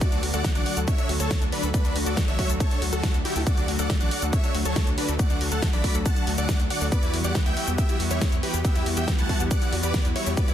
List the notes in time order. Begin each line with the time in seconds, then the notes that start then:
0.01 D3 F#3 A3 F#4 D5, kick, closed hi-hat, shaker
0.12 D2 D4, closed hi-hat, shaker
0.23 D2 D3 F#3 A3 F#4, open hi-hat
0.34 D2 A4 D5 F#5, closed hi-hat, shaker
0.44 D3 F#3 A3 F#4, kick, snare, closed hi-hat, shaker
0.55 A1 D4 D5 F#5, closed hi-hat, shaker
0.66 F#4, open hi-hat
0.77 D2 D3 F#3 A3 F#4 A4, closed hi-hat, shaker
0.88 A3 C#5 E5, kick, closed hi-hat, shaker
0.98 D3 F#3 A3 D4 F#4, closed hi-hat, shaker
1.09 D2 F#4, open hi-hat
1.20 D2 D3 F#3 A3 F#4 A4 C#5, closed hi-hat, shaker
1.31 A3, kick, snare, closed hi-hat, shaker
1.42 D2 D4, closed hi-hat, shaker
1.52 D3 F#3 A3 D4 F#4 B4, open hi-hat
1.63 D2 A4, closed hi-hat, shaker
1.74 D3 F#3 A3 D4 F#4 B4, kick, closed hi-hat, shaker
1.85 D2 D4, closed hi-hat, shaker
1.95 D2 D3 F#3 A3 F#4, open hi-hat
2.06 D2 F#4 A4 D5, closed hi-hat, shaker
2.17 D3 F#3 A3 F#4, kick, snare, closed hi-hat, shaker
2.28 A1 D4 C#5 E5, closed hi-hat, shaker
2.39 F#4, kick, open hi-hat
2.49 D2 D3 F#3 A3 F#4 A4, closed hi-hat, shaker
2.60 A3 A4 C#5, kick, closed hi-hat, shaker
2.71 D3 F#3 A3 D4 F#4, closed hi-hat, shaker
2.82 D2 F#4, open hi-hat
2.93 D2 D3 F#3 A3 F#4 A4, closed hi-hat, shaker
3.03 A3, kick, snare, closed hi-hat, shaker
3.14 D2 D4, closed hi-hat, shaker
3.25 D3 F#3 A3 E4 F#4 G4, open hi-hat
3.36 D2 A4, open hi-hat, shaker
3.47 D3 F#3 A3 F#4 D5, kick, closed hi-hat, shaker
3.57 D2 D4, closed hi-hat, shaker
3.68 D2 D3 F#3 A3 F#4, open hi-hat
3.79 D2 A4 D5 F#5, closed hi-hat, shaker
3.90 D3 F#3 A3 F#4, kick, snare, closed hi-hat, shaker
4.01 A1 D4 D5 F#5, closed hi-hat, shaker
4.11 F#4, open hi-hat
4.22 D2 D3 F#3 A3 F#4 A4, closed hi-hat, shaker
4.33 A3 C#5 E5, kick, closed hi-hat, shaker
4.44 D3 F#3 A3 D4 F#4, closed hi-hat, shaker
4.55 D2 F#4, open hi-hat
4.65 D2 D3 F#3 A3 F#4 A4 C#5, closed hi-hat, shaker
4.76 A3, kick, snare, closed hi-hat, shaker
4.87 D2 D4, closed hi-hat, shaker
4.98 D3 F#3 A3 D4 F#4 B4, open hi-hat
5.09 D2 A4, closed hi-hat, shaker
5.19 D3 F#3 A3 F#4 D5 F#5, kick, closed hi-hat, shaker
5.30 D2 D4, closed hi-hat, shaker
5.41 D2 D3 F#3 A3 F#4, open hi-hat
5.52 D2 A4 F#5 A5, closed hi-hat, shaker
5.62 D3 F#3 A3 F#4, kick, snare, closed hi-hat, shaker
5.73 A1 D4 D5 B5, closed hi-hat, shaker
5.84 F#4, kick, open hi-hat
5.95 D2 D3 F#3 A3 F#4 A4, closed hi-hat, shaker
6.06 A3 F#5 A5, kick, closed hi-hat, shaker
6.16 D3 F#3 A3 D4 F#4, closed hi-hat, shaker
6.27 D2 F#4, open hi-hat
6.38 D2 D3 F#3 A3 F#4 A4 D5 F#5, closed hi-hat, shaker
6.49 A3, kick, snare, closed hi-hat, shaker
6.60 D2 D4, closed hi-hat, shaker
6.70 D3 F#3 A3 F#4 D5 F#5, open hi-hat
6.81 D2 A4, open hi-hat, shaker
6.92 E3 G3 B3 F#4 B4 D5, kick, closed hi-hat, shaker
7.03 E2 E4, closed hi-hat, shaker
7.14 E2 E3 G3 B3 F#4, open hi-hat
7.24 E2 G4 D5 F#5, closed hi-hat, shaker
7.35 E3 G3 B3 F#4, kick, snare, closed hi-hat, shaker
7.46 D2 E4 E5 G5, closed hi-hat, shaker
7.57 F#4, open hi-hat
7.68 E2 E3 G3 B3 F#4 G4, closed hi-hat, shaker
7.78 B3 G4 E5, kick, closed hi-hat, shaker
7.89 E3 G3 B3 E4 F#4, closed hi-hat, shaker
8.00 E2 F#4, open hi-hat
8.11 E2 E3 G3 B3 E4 F#4 G4 C#5, closed hi-hat, shaker
8.21 B3, kick, snare, closed hi-hat, shaker
8.32 E2 E4, closed hi-hat, shaker
8.43 E3 G3 B3 F#4 G4 B4, open hi-hat
8.54 E2 G4, closed hi-hat, shaker
8.65 E3 G3 B3 F#4 G4 E5, kick, closed hi-hat, shaker
8.75 E2 E4, closed hi-hat, shaker
8.86 E2 E3 G3 B3 F#4, open hi-hat
8.97 E2 G4 E5 G5, closed hi-hat, shaker
9.08 E3 G3 B3 F#4, kick, snare, closed hi-hat, shaker
9.18 D2 E4 F#5 A5, closed hi-hat, shaker
9.29 F#4, kick, open hi-hat
9.40 E2 E3 G3 B3 F#4 G4, closed hi-hat, shaker
9.51 B3 D5 F#5, kick, closed hi-hat, shaker
9.62 E3 G3 B3 E4 F#4, closed hi-hat, shaker
9.72 E2 F#4, open hi-hat
9.83 E2 E3 G3 B3 F#4 G4 B4 D5, closed hi-hat, shaker
9.94 B3, kick, snare, closed hi-hat, shaker
10.05 E2 E4, closed hi-hat, shaker
10.16 E3 G3 B3 E4 F#4 C#5, open hi-hat
10.26 E2 G4, open hi-hat, shaker
10.37 E3 G3 A3 B3 F#4 B4 D5, kick, closed hi-hat, shaker
10.48 E2 E4, closed hi-hat, shaker